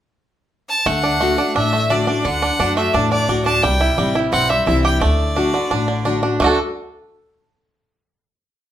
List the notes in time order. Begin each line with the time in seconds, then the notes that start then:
0.69 A5
0.86 D2 D3 A3 F#5
1.03 D4
1.20 D3 A3 D4 F#4
1.37 D4 F#4
1.55 A1 A2 D4 E5
1.73 A3
1.90 D3 A3 D4 F#4 D5
2.07 D4 F#4
2.25 D2 D3 F#5
2.42 D4
2.59 F#2 D3 A3 D4 F#4
2.77 A3 D4 F#4 E5
2.93 E2 A2 D4 D5
3.11 D4 D5
3.29 D2 D3 A3 D4 F#4
3.45 D4 A5
3.63 C2 C3 G3 G5
3.81 E4
3.97 A1 E3 G3 C4 E4
4.15 C4 E4
4.32 B1 G2 C4 F#5
4.49 G3 E5
4.66 C2 E3 G3 C4 E4 E5
4.84 G4 G5
5.01 D2 D3 A3 D5
5.36 D3 A3 D4 F#4
5.53 D3 D4 F#4
5.71 A1 A2 D4
5.88 D3
6.05 D3 A3 D4 F#4
6.22 D4 F#4
6.40 D2 D3 A3 D4 F#4 A4
6.44 F#4 A4